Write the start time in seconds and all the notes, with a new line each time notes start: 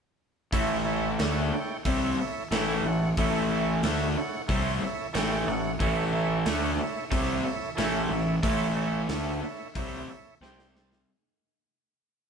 0.52 A1 A2 E3 A3 E4 A4 C#5 E5, kick, open hi-hat
0.85 E4 A4 C#5 E5
1.18 D2 D3 A3 D4 E4 A4 C#5 E5, snare, open hi-hat
1.51 E4 A4 C#5 G5, muted fingered electric bass stroke, muted overdriven electric guitar stroke
1.85 C2 C3 G3 C4 E4 A4 C#5 E5, kick, open hi-hat
2.18 E4 A4 C#5 E5, muted fingered electric bass stroke, muted overdriven electric guitar stroke
2.50 A1 A2 E3 A3 E4 A4 C#5 E5, snare, open hi-hat
2.84 A1 A2 E3 E4 A4 C#5 F#5
3.17 A1 A2 E3 A3 E4 A4 C#5 E5, kick, open hi-hat
3.50 E4 A4 C#5 E5
3.83 D2 D3 A3 D4 E4 A4 C#5 E5, snare, open hi-hat
4.16 E4 A4 C#5 F#5, muted fingered electric bass stroke, muted overdriven electric guitar stroke
4.47 C2 C3 G3 C4 E4 A4 C#5 E5, kick, open hi-hat
4.81 E4 A4 C#5 E5, muted overdriven electric guitar stroke, muted fingered electric bass stroke
5.13 A1 A2 E3 A3 E4 A4 C#5 G5, snare, open hi-hat
5.46 A1 A2 E3 E4 A4 C#5 F#5
5.79 A1 A2 E3 A3 E4 A4 C#5 E5, kick, open hi-hat
6.12 E4 A4 C#5 E5
6.45 D2 D3 A3 D4 E4 A4 C#5 E5, snare, open hi-hat
6.78 E4 A4 C#5 E5, muted overdriven electric guitar stroke, muted fingered electric bass stroke
7.10 C2 C3 G3 C4 E4 A4 C#5 E5, kick, open hi-hat
7.43 E4 A4 C#5 E5, muted fingered electric bass stroke, muted overdriven electric guitar stroke
7.75 A1 A2 E3 A3 E4 A4 C#5 E5, snare, open hi-hat
8.09 A1 A2 E3 E4 A4 C#5 E5
8.42 A1 A2 E3 A3 E4 A4 C#5 E5, kick, open hi-hat
8.76 E4 A4 C#5 E5
9.08 D2 D3 A3 D4 E4 A4 C#5 E5, snare, open hi-hat
9.41 E4 A4 C#5 E5, muted fingered electric bass stroke, muted overdriven electric guitar stroke
9.75 C2 C3 G3 C4 E4 A4 C#5 E5, kick, open hi-hat
10.08 E4 A4 C#5 E5, muted fingered electric bass stroke, muted overdriven electric guitar stroke
10.41 C2 C3 G3 C4 G4 C5 G5, snare
10.59 snare
10.75 C4 G4 C5 A5, snare
10.92 snare